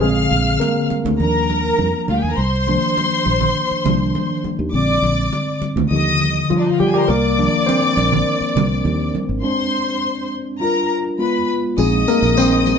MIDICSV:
0, 0, Header, 1, 6, 480
1, 0, Start_track
1, 0, Key_signature, -3, "minor"
1, 0, Tempo, 587659
1, 19, Time_signature, 4, 2, 24, 8
1, 10444, End_track
2, 0, Start_track
2, 0, Title_t, "String section"
2, 0, Program_c, 0, 48
2, 12, Note_on_c, 0, 89, 89
2, 14, Note_on_c, 0, 77, 81
2, 722, Note_off_c, 0, 89, 0
2, 723, Note_off_c, 0, 77, 0
2, 971, Note_on_c, 0, 70, 82
2, 974, Note_on_c, 0, 82, 90
2, 1635, Note_off_c, 0, 70, 0
2, 1637, Note_off_c, 0, 82, 0
2, 1705, Note_on_c, 0, 65, 50
2, 1708, Note_on_c, 0, 77, 52
2, 1761, Note_on_c, 0, 67, 55
2, 1763, Note_off_c, 0, 65, 0
2, 1764, Note_on_c, 0, 79, 67
2, 1765, Note_off_c, 0, 77, 0
2, 1809, Note_on_c, 0, 68, 62
2, 1810, Note_on_c, 0, 80, 70
2, 1821, Note_off_c, 0, 67, 0
2, 1823, Note_off_c, 0, 79, 0
2, 1870, Note_on_c, 0, 82, 86
2, 1875, Note_off_c, 0, 68, 0
2, 1875, Note_on_c, 0, 70, 73
2, 1876, Note_off_c, 0, 80, 0
2, 1936, Note_off_c, 0, 82, 0
2, 1938, Note_off_c, 0, 70, 0
2, 1938, Note_on_c, 0, 72, 88
2, 1938, Note_on_c, 0, 84, 94
2, 3589, Note_off_c, 0, 72, 0
2, 3589, Note_off_c, 0, 84, 0
2, 3865, Note_on_c, 0, 86, 90
2, 3866, Note_on_c, 0, 74, 82
2, 4570, Note_off_c, 0, 86, 0
2, 4571, Note_off_c, 0, 74, 0
2, 4822, Note_on_c, 0, 75, 80
2, 4826, Note_on_c, 0, 87, 86
2, 5305, Note_off_c, 0, 75, 0
2, 5307, Note_off_c, 0, 87, 0
2, 5373, Note_on_c, 0, 74, 52
2, 5374, Note_on_c, 0, 62, 52
2, 5429, Note_off_c, 0, 62, 0
2, 5429, Note_off_c, 0, 74, 0
2, 5431, Note_on_c, 0, 75, 59
2, 5433, Note_on_c, 0, 63, 56
2, 5488, Note_off_c, 0, 75, 0
2, 5489, Note_off_c, 0, 63, 0
2, 5489, Note_on_c, 0, 65, 61
2, 5491, Note_on_c, 0, 77, 66
2, 5547, Note_off_c, 0, 65, 0
2, 5548, Note_off_c, 0, 77, 0
2, 5551, Note_on_c, 0, 67, 63
2, 5552, Note_on_c, 0, 79, 71
2, 5608, Note_off_c, 0, 67, 0
2, 5608, Note_off_c, 0, 79, 0
2, 5612, Note_on_c, 0, 68, 64
2, 5615, Note_on_c, 0, 80, 78
2, 5665, Note_on_c, 0, 82, 79
2, 5666, Note_on_c, 0, 70, 72
2, 5669, Note_off_c, 0, 68, 0
2, 5670, Note_off_c, 0, 80, 0
2, 5725, Note_off_c, 0, 70, 0
2, 5725, Note_off_c, 0, 82, 0
2, 5728, Note_on_c, 0, 72, 74
2, 5730, Note_on_c, 0, 84, 86
2, 5784, Note_on_c, 0, 74, 91
2, 5786, Note_off_c, 0, 72, 0
2, 5787, Note_off_c, 0, 84, 0
2, 5787, Note_on_c, 0, 86, 94
2, 7431, Note_off_c, 0, 74, 0
2, 7433, Note_off_c, 0, 86, 0
2, 7693, Note_on_c, 0, 84, 88
2, 7694, Note_on_c, 0, 72, 79
2, 8404, Note_off_c, 0, 72, 0
2, 8404, Note_off_c, 0, 84, 0
2, 8657, Note_on_c, 0, 82, 89
2, 8660, Note_on_c, 0, 70, 76
2, 8895, Note_off_c, 0, 82, 0
2, 8897, Note_off_c, 0, 70, 0
2, 9144, Note_on_c, 0, 71, 72
2, 9145, Note_on_c, 0, 83, 76
2, 9379, Note_off_c, 0, 71, 0
2, 9379, Note_off_c, 0, 83, 0
2, 9628, Note_on_c, 0, 75, 76
2, 9629, Note_on_c, 0, 87, 89
2, 10444, Note_off_c, 0, 75, 0
2, 10444, Note_off_c, 0, 87, 0
2, 10444, End_track
3, 0, Start_track
3, 0, Title_t, "Tine electric piano"
3, 0, Program_c, 1, 4
3, 0, Control_c, 1, 64, 127
3, 9, Note_on_c, 1, 68, 87
3, 18, Note_on_c, 1, 50, 49
3, 18, Note_on_c, 1, 56, 67
3, 27, Note_on_c, 1, 60, 50
3, 30, Control_c, 1, 64, 0
3, 161, Control_c, 1, 64, 127
3, 472, Note_off_c, 1, 56, 0
3, 488, Note_on_c, 1, 70, 75
3, 502, Note_on_c, 1, 58, 58
3, 509, Note_off_c, 1, 68, 0
3, 947, Note_off_c, 1, 50, 0
3, 952, Note_off_c, 1, 60, 0
3, 978, Note_on_c, 1, 53, 49
3, 986, Note_on_c, 1, 55, 45
3, 990, Control_c, 1, 64, 0
3, 992, Note_on_c, 1, 62, 49
3, 1153, Control_c, 1, 64, 127
3, 1423, Note_off_c, 1, 70, 0
3, 1430, Note_off_c, 1, 58, 0
3, 1908, Note_off_c, 1, 53, 0
3, 1912, Note_off_c, 1, 55, 0
3, 1915, Note_off_c, 1, 62, 0
3, 1952, Control_c, 1, 64, 0
3, 2076, Control_c, 1, 64, 127
3, 2187, Note_on_c, 1, 53, 47
3, 2188, Note_on_c, 1, 51, 51
3, 2191, Note_on_c, 1, 58, 47
3, 2196, Note_on_c, 1, 62, 55
3, 2504, Note_off_c, 1, 53, 0
3, 2505, Note_off_c, 1, 51, 0
3, 2506, Note_off_c, 1, 58, 0
3, 2509, Note_off_c, 1, 62, 0
3, 3140, Note_on_c, 1, 51, 44
3, 3141, Note_on_c, 1, 53, 42
3, 3144, Note_on_c, 1, 58, 38
3, 3148, Note_on_c, 1, 62, 48
3, 3358, Note_off_c, 1, 51, 0
3, 3359, Note_off_c, 1, 53, 0
3, 3360, Note_off_c, 1, 58, 0
3, 3362, Note_off_c, 1, 62, 0
3, 3862, Note_on_c, 1, 50, 48
3, 3862, Note_on_c, 1, 56, 43
3, 3874, Note_on_c, 1, 60, 55
3, 3876, Control_c, 1, 64, 0
3, 4004, Control_c, 1, 64, 127
3, 4791, Note_off_c, 1, 50, 0
3, 4791, Note_off_c, 1, 56, 0
3, 4797, Note_off_c, 1, 60, 0
3, 4817, Note_on_c, 1, 53, 46
3, 4821, Note_on_c, 1, 55, 41
3, 4828, Note_on_c, 1, 50, 51
3, 4837, Control_c, 1, 64, 0
3, 5001, Control_c, 1, 64, 127
3, 5140, Note_off_c, 1, 53, 0
3, 5142, Note_off_c, 1, 55, 0
3, 5146, Note_off_c, 1, 50, 0
3, 5309, Note_on_c, 1, 65, 75
3, 5320, Note_on_c, 1, 53, 63
3, 5536, Note_off_c, 1, 53, 0
3, 5552, Note_on_c, 1, 67, 83
3, 5554, Note_off_c, 1, 65, 0
3, 5562, Note_on_c, 1, 55, 62
3, 5656, Note_off_c, 1, 67, 0
3, 5666, Note_off_c, 1, 55, 0
3, 5666, Note_on_c, 1, 67, 75
3, 5680, Note_on_c, 1, 55, 61
3, 5780, Note_on_c, 1, 70, 86
3, 5785, Note_off_c, 1, 55, 0
3, 5789, Note_off_c, 1, 67, 0
3, 5796, Control_c, 1, 64, 0
3, 5796, Note_on_c, 1, 58, 74
3, 5927, Control_c, 1, 64, 127
3, 6021, Note_off_c, 1, 58, 0
3, 6022, Note_on_c, 1, 51, 52
3, 6026, Note_on_c, 1, 53, 51
3, 6031, Note_on_c, 1, 58, 50
3, 6035, Note_on_c, 1, 62, 59
3, 6230, Note_off_c, 1, 70, 0
3, 6259, Note_on_c, 1, 72, 89
3, 6271, Note_on_c, 1, 60, 68
3, 6343, Note_off_c, 1, 51, 0
3, 6345, Note_off_c, 1, 53, 0
3, 6347, Note_off_c, 1, 58, 0
3, 6349, Note_off_c, 1, 62, 0
3, 7691, Note_off_c, 1, 60, 0
3, 7694, Note_on_c, 1, 56, 50
3, 7701, Note_on_c, 1, 60, 43
3, 7705, Note_on_c, 1, 62, 50
3, 7715, Control_c, 1, 64, 0
3, 7851, Control_c, 1, 64, 127
3, 8018, Note_off_c, 1, 56, 0
3, 8022, Note_off_c, 1, 60, 0
3, 8024, Note_off_c, 1, 62, 0
3, 8657, Note_on_c, 1, 55, 44
3, 8663, Note_on_c, 1, 62, 39
3, 8668, Note_on_c, 1, 65, 55
3, 8674, Control_c, 1, 64, 0
3, 8836, Control_c, 1, 64, 127
3, 8979, Note_off_c, 1, 55, 0
3, 8982, Note_off_c, 1, 62, 0
3, 8985, Note_off_c, 1, 65, 0
3, 9108, Note_off_c, 1, 72, 0
3, 9135, Note_on_c, 1, 56, 50
3, 9140, Note_on_c, 1, 59, 46
3, 9147, Note_on_c, 1, 65, 51
3, 9155, Control_c, 1, 64, 0
3, 9289, Control_c, 1, 64, 127
3, 9594, Note_off_c, 1, 56, 0
3, 9597, Note_off_c, 1, 59, 0
3, 9601, Note_off_c, 1, 65, 0
3, 9618, Note_on_c, 1, 56, 60
3, 9621, Note_on_c, 1, 60, 48
3, 9629, Note_on_c, 1, 63, 58
3, 9630, Note_on_c, 1, 68, 72
3, 9633, Control_c, 1, 64, 0
3, 9777, Control_c, 1, 64, 127
3, 9848, Note_off_c, 1, 56, 0
3, 9850, Note_off_c, 1, 68, 0
3, 9869, Note_on_c, 1, 70, 91
3, 9870, Note_on_c, 1, 58, 71
3, 10089, Note_off_c, 1, 70, 0
3, 10090, Note_off_c, 1, 58, 0
3, 10104, Note_off_c, 1, 60, 0
3, 10109, Note_on_c, 1, 72, 91
3, 10114, Note_on_c, 1, 60, 72
3, 10312, Note_off_c, 1, 63, 0
3, 10444, Note_off_c, 1, 60, 0
3, 10444, Note_off_c, 1, 72, 0
3, 10444, End_track
4, 0, Start_track
4, 0, Title_t, "Fingered electric bass"
4, 0, Program_c, 2, 33
4, 18, Note_on_c, 2, 34, 98
4, 227, Note_off_c, 2, 34, 0
4, 255, Note_on_c, 2, 34, 79
4, 466, Note_off_c, 2, 34, 0
4, 858, Note_on_c, 2, 38, 76
4, 963, Note_off_c, 2, 38, 0
4, 979, Note_on_c, 2, 39, 83
4, 1398, Note_off_c, 2, 39, 0
4, 1464, Note_on_c, 2, 41, 79
4, 1567, Note_off_c, 2, 41, 0
4, 1704, Note_on_c, 2, 38, 68
4, 1807, Note_off_c, 2, 38, 0
4, 1824, Note_on_c, 2, 39, 71
4, 1928, Note_off_c, 2, 39, 0
4, 1942, Note_on_c, 2, 36, 88
4, 2256, Note_off_c, 2, 36, 0
4, 2665, Note_on_c, 2, 34, 92
4, 2873, Note_off_c, 2, 34, 0
4, 3151, Note_on_c, 2, 36, 78
4, 3356, Note_off_c, 2, 36, 0
4, 3748, Note_on_c, 2, 39, 83
4, 3851, Note_off_c, 2, 39, 0
4, 3868, Note_on_c, 2, 34, 87
4, 4075, Note_off_c, 2, 34, 0
4, 4104, Note_on_c, 2, 34, 78
4, 4313, Note_off_c, 2, 34, 0
4, 4703, Note_on_c, 2, 38, 74
4, 4808, Note_off_c, 2, 38, 0
4, 4827, Note_on_c, 2, 39, 85
4, 5243, Note_off_c, 2, 39, 0
4, 5789, Note_on_c, 2, 36, 88
4, 6100, Note_off_c, 2, 36, 0
4, 6510, Note_on_c, 2, 34, 81
4, 6717, Note_off_c, 2, 34, 0
4, 6989, Note_on_c, 2, 36, 74
4, 7196, Note_off_c, 2, 36, 0
4, 7228, Note_on_c, 2, 39, 87
4, 7435, Note_off_c, 2, 39, 0
4, 7588, Note_on_c, 2, 32, 74
4, 7691, Note_off_c, 2, 32, 0
4, 9623, Note_on_c, 2, 34, 101
4, 9831, Note_off_c, 2, 34, 0
4, 9984, Note_on_c, 2, 34, 87
4, 10400, Note_off_c, 2, 34, 0
4, 10444, End_track
5, 0, Start_track
5, 0, Title_t, "Muted fingered electric bass strokes"
5, 741, Note_on_c, 9, 29, 42
5, 823, Note_off_c, 9, 29, 0
5, 3032, Note_on_c, 9, 29, 39
5, 3113, Note_off_c, 9, 29, 0
5, 3631, Note_on_c, 9, 29, 39
5, 3712, Note_off_c, 9, 29, 0
5, 4587, Note_on_c, 9, 29, 45
5, 4668, Note_off_c, 9, 29, 0
5, 6867, Note_on_c, 9, 29, 41
5, 6949, Note_off_c, 9, 29, 0
5, 10444, End_track
6, 0, Start_track
6, 0, Title_t, "Drums"
6, 258, Note_on_c, 9, 62, 42
6, 340, Note_off_c, 9, 62, 0
6, 502, Note_on_c, 9, 63, 58
6, 583, Note_off_c, 9, 63, 0
6, 738, Note_on_c, 9, 62, 51
6, 819, Note_off_c, 9, 62, 0
6, 864, Note_on_c, 9, 64, 55
6, 945, Note_off_c, 9, 64, 0
6, 981, Note_on_c, 9, 62, 29
6, 1063, Note_off_c, 9, 62, 0
6, 1225, Note_on_c, 9, 62, 45
6, 1306, Note_off_c, 9, 62, 0
6, 1461, Note_on_c, 9, 63, 64
6, 1542, Note_off_c, 9, 63, 0
6, 1700, Note_on_c, 9, 63, 59
6, 1782, Note_off_c, 9, 63, 0
6, 2184, Note_on_c, 9, 62, 42
6, 2266, Note_off_c, 9, 62, 0
6, 2428, Note_on_c, 9, 63, 53
6, 2510, Note_off_c, 9, 63, 0
6, 2660, Note_on_c, 9, 62, 52
6, 2742, Note_off_c, 9, 62, 0
6, 2784, Note_on_c, 9, 64, 58
6, 2866, Note_off_c, 9, 64, 0
6, 3150, Note_on_c, 9, 62, 43
6, 3150, Note_on_c, 9, 64, 65
6, 3231, Note_off_c, 9, 62, 0
6, 3231, Note_off_c, 9, 64, 0
6, 3391, Note_on_c, 9, 63, 65
6, 3472, Note_off_c, 9, 63, 0
6, 3630, Note_on_c, 9, 63, 64
6, 3712, Note_off_c, 9, 63, 0
6, 4112, Note_on_c, 9, 62, 44
6, 4194, Note_off_c, 9, 62, 0
6, 4351, Note_on_c, 9, 63, 57
6, 4432, Note_off_c, 9, 63, 0
6, 4588, Note_on_c, 9, 62, 52
6, 4669, Note_off_c, 9, 62, 0
6, 4713, Note_on_c, 9, 64, 60
6, 4795, Note_off_c, 9, 64, 0
6, 4824, Note_on_c, 9, 62, 30
6, 4906, Note_off_c, 9, 62, 0
6, 5076, Note_on_c, 9, 62, 46
6, 5158, Note_off_c, 9, 62, 0
6, 5313, Note_on_c, 9, 63, 68
6, 5395, Note_off_c, 9, 63, 0
6, 5556, Note_on_c, 9, 63, 67
6, 5637, Note_off_c, 9, 63, 0
6, 6036, Note_on_c, 9, 62, 43
6, 6117, Note_off_c, 9, 62, 0
6, 6281, Note_on_c, 9, 63, 61
6, 6362, Note_off_c, 9, 63, 0
6, 6512, Note_on_c, 9, 62, 54
6, 6594, Note_off_c, 9, 62, 0
6, 6634, Note_on_c, 9, 64, 61
6, 6716, Note_off_c, 9, 64, 0
6, 6998, Note_on_c, 9, 62, 48
6, 6998, Note_on_c, 9, 64, 67
6, 7080, Note_off_c, 9, 62, 0
6, 7080, Note_off_c, 9, 64, 0
6, 7229, Note_on_c, 9, 63, 70
6, 7311, Note_off_c, 9, 63, 0
6, 7472, Note_on_c, 9, 63, 65
6, 7554, Note_off_c, 9, 63, 0
6, 9620, Note_on_c, 9, 54, 56
6, 9701, Note_off_c, 9, 54, 0
6, 9865, Note_on_c, 9, 54, 43
6, 9871, Note_on_c, 9, 62, 46
6, 9947, Note_off_c, 9, 54, 0
6, 9952, Note_off_c, 9, 62, 0
6, 9985, Note_on_c, 9, 54, 33
6, 10066, Note_off_c, 9, 54, 0
6, 10103, Note_on_c, 9, 54, 71
6, 10109, Note_on_c, 9, 63, 60
6, 10185, Note_off_c, 9, 54, 0
6, 10191, Note_off_c, 9, 63, 0
6, 10340, Note_on_c, 9, 54, 47
6, 10350, Note_on_c, 9, 62, 55
6, 10421, Note_off_c, 9, 54, 0
6, 10431, Note_off_c, 9, 62, 0
6, 10444, End_track
0, 0, End_of_file